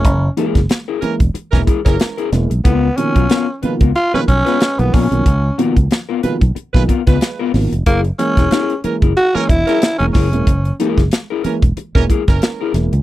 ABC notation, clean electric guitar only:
X:1
M:4/4
L:1/16
Q:"Swing 16ths" 1/4=92
K:Gb
V:1 name="Clean electric guitar"
z2 [_FAB] z2 [FAB] z4 [FAB] [FAd] z [FAB] z2 | [CFB] z2 [CFB] [CFB] z2 [CFB] z3 [CFc] z2 [CFB] z | z2 [CFB] z2 [CFB] z4 [CFB] [CFc] z [CFB] z2 | [_FAB] z2 [FAB] [FAB] z2 [FAB] z3 [FAd] z2 [FAB] z |
z2 [_FAB] z2 [FAB] z4 [FAB] z2 [FAB] z2 |]